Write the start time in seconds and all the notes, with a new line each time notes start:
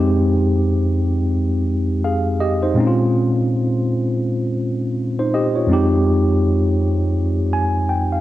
Already playing: F2 G#3 C4 D#4 G4
2.04 G#4 F5
2.40 G4 D#5
2.63 D#4 C5
2.74 A#2 G#3 C4
2.79 C#4 D#4
2.87 F4
5.19 D#4 C5
5.34 G4 D#5
5.56 F4 C#5
5.67 F2 G#3 C4
5.72 D#4 G4
7.53 G#5
7.89 G5
8.12 F5